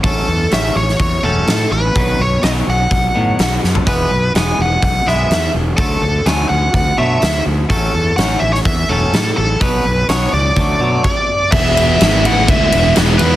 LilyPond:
<<
  \new Staff \with { instrumentName = "Lead electric guitar" } { \time 4/4 \key e \mixolydian \tempo 4 = 125 a'4 e''8 cis''8 cis''8 a'4 b'8~ | b'8 cis''8 dis''8 fis''2 r8 | b'4 gis''8 fis''8 fis''8 e''4 r8 | a'4 gis''8 fis''8 fis''8 e''4 r8 |
a'4 fis''8 e''16 cis''16 e''8 a'4 a'8 | b'4 cis''8 d''4. d''4 | e''4. fis''8 e''4 r8 b'8 | }
  \new Staff \with { instrumentName = "Distorted electric guitar" } { \time 4/4 \key e \mixolydian r1 | r1 | r1 | r1 |
r1 | r1 | <e gis b e'>4 <e gis b e'>8 <gis b e'>8 <e gis b e'>4 <e gis b e'>8 <gis b e'>8 | }
  \new Staff \with { instrumentName = "Clean electric guitar" } { \clef bass \time 4/4 \key e \mixolydian <a, fis cis'>8 <a, fis>8 <a, fis cis'>8 <a, fis>8 <a, fis>8 <a, fis cis'>8 <a, fis>8 <a, fis>8 | <b, dis fis>8 <b, dis>8 <b, dis fis>8 <b, dis>8 <b, dis>8 <b, dis fis>8 <b, dis>8 <b, dis>8 | <e gis b>8 <e gis>8 <e gis b>8 <e gis>8 <e gis>8 <e gis b>8 <e gis>8 <e gis>8 | <d fis a>8 <d fis>8 <d fis a>8 <d fis>8 <d fis>8 <d fis a>8 <d fis>8 <d fis>8 |
<a, fis cis'>8 <a, fis>8 <a, fis cis'>8 <a, fis>8 <a, fis>8 <a, fis cis'>8 <a, fis>8 <a, fis>8 | <b, fis b>8 <b, fis>8 <b, fis b>8 <b, fis>8 <d fis a>8 <d fis a>8 r4 | r1 | }
  \new Staff \with { instrumentName = "Fingered electric bass" } { \clef bass \time 4/4 \key e \mixolydian a,,8 e,8 a,,8 a,,8 e,8 e,,8 a,8 a,,8 | b,,8 b,,8 b,,8 b,,8 b,,8 a,8 b,,8 fis,8 | e,,8 b,,8 e,,8 e,,8 b,,8 b,,8 e,8 e,,8 | d,8 d,8 d,8 d,8 d,8 b,8 d,8 d,8 |
a,,8 e,8 a,,8 a,,8 e,8 e,,8 a,8 a,,8 | b,,8 b,,8 b,,8 cis,8 d,8 b,8 r4 | e,,4 gis,,8 a,,8 d,8 e,,8 e,,8 e,8 | }
  \new DrumStaff \with { instrumentName = "Drums" } \drummode { \time 4/4 <hho bd>4 <hho sn>8. sn16 <hho bd>4 <hho sn>4 | <hho bd>4 <hho sn>4 <hho bd>4 <hho sn>8 sn16 tomfh16 | <hho bd>4 <hho sn>4 <hho bd>8 sn8 <hho sn>4 | <hho bd>4 <hho sn>4 <hho bd>4 <hho sn>4 |
<hho bd>4 <hho sn>8. sn16 <hho bd>4 <hho sn>4 | <hho bd>4 <hho sn>4 <hho bd>4 <cymc bd>4 | <cymc bd>8 cymr8 <cymr sn>8 cymr8 <bd cymr>8 cymr8 <cymr sn>8 cymr8 | }
>>